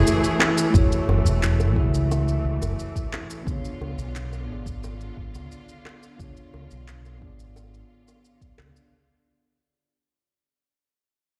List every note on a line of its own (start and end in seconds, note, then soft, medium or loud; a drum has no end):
0.00 3.43 E3 medium
0.00 0.68 A3 medium
0.00 3.43 A3 medium
0.00 0.69 E4 medium
0.00 0.74 F#4 medium
0.00 0.71 G#4 medium
0.00 0.76 G#4 medium
0.00 0.78 C#5 medium
0.00 0.72 E5 medium
0.07 shaker soft
0.24 shaker soft
0.40 clap medium
0.40 high bongo medium
0.58 shaker medium
0.70 0.86 F#1 medium
0.70 1.70 A3 medium
0.70 1.71 E4 medium
0.70 1.72 F#4 medium
0.70 kick loud
0.75 1.73 G#4 medium
0.75 1.74 C#5 medium
0.75 shaker soft
0.92 shaker soft
1.08 1.20 F#1 medium
1.08 high bongo medium
1.25 1.76 E1 medium
1.25 shaker medium
1.43 clap medium
1.43 shaker soft
1.60 high bongo medium
1.60 shaker soft
1.73 2.36 C#2 medium
1.73 3.41 A3 medium
1.73 3.42 E4 medium
1.73 3.43 F#4 medium
1.73 kick medium
1.78 3.44 G#4 medium
1.78 3.44 E5 medium
1.94 shaker medium
2.11 high bongo medium
2.11 shaker soft
2.28 shaker soft
2.45 2.57 C#2 medium
2.61 2.73 F#1 medium
2.61 high bongo medium
2.61 shaker medium
2.79 shaker soft
2.96 kick medium
2.96 shaker soft
3.13 clap medium
3.13 high bongo medium
3.30 shaker medium
3.44 3.59 C#2 medium
3.44 8.88 D3 medium
3.44 4.44 B3 medium
3.44 6.17 B3 medium
3.44 4.44 D4 medium
3.44 8.88 F4 medium
3.44 4.45 F4 medium
3.44 kick loud
3.44 shaker soft
3.50 4.46 G#4 medium
3.50 4.47 C#5 medium
3.65 shaker soft
3.81 3.93 C#2 medium
3.81 high bongo medium
3.98 4.49 B1 medium
3.98 shaker medium
4.16 clap medium
4.16 shaker soft
4.33 high bongo medium
4.33 shaker soft
4.46 5.09 G#1 medium
4.46 6.14 B3 medium
4.46 6.15 D4 medium
4.46 6.16 F4 medium
4.51 6.16 G#4 medium
4.51 6.17 D5 medium
4.66 kick medium
4.66 shaker medium
4.84 high bongo medium
4.84 shaker soft
5.01 shaker soft
5.17 5.29 G#1 medium
5.17 kick medium
5.34 5.46 C#2 medium
5.34 high bongo medium
5.34 shaker medium
5.52 shaker soft
5.69 shaker soft
5.85 clap medium
5.85 high bongo medium
6.03 shaker medium
6.16 6.31 C#2 medium
6.16 7.16 B3 medium
6.16 7.17 D4 medium
6.16 kick loud
6.16 shaker soft
6.20 7.18 F4 medium
6.20 7.19 G#4 medium
6.20 7.20 C#5 medium
6.37 shaker soft
6.54 6.66 C#2 medium
6.54 high bongo medium
6.71 7.22 B1 medium
6.71 shaker medium
6.88 clap medium
6.88 shaker soft
7.05 high bongo soft
7.05 shaker soft
7.18 7.82 G#1 medium
7.18 8.86 B3 medium
7.18 8.87 D4 medium
7.18 8.88 F4 medium
7.18 kick medium
7.24 8.89 G#4 medium
7.24 8.90 D5 medium
7.40 shaker medium
7.56 high bongo medium
7.56 shaker soft
7.74 shaker soft
8.08 high bongo medium
8.08 shaker medium
8.25 shaker soft
8.41 kick medium
8.41 shaker soft
8.58 8.70 C#2 medium
8.58 clap medium
8.58 high bongo medium
8.76 shaker medium